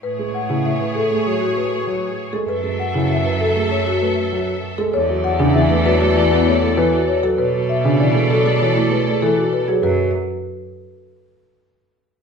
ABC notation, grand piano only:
X:1
M:4/4
L:1/16
Q:1/4=98
K:Bdor
V:1 name="Grand piano" clef=bass
z G, z C, z3 A, F, z A, z F, z2 G, | z G, z C, z3 A, F, z A, z F, z2 G, | z F, z C, E, A, F, A, E, B, A, B, E, z2 F, | z F, z C, E, G, F, G, E, A, G, A, E, z2 F, |
F,2 z12 z2 |]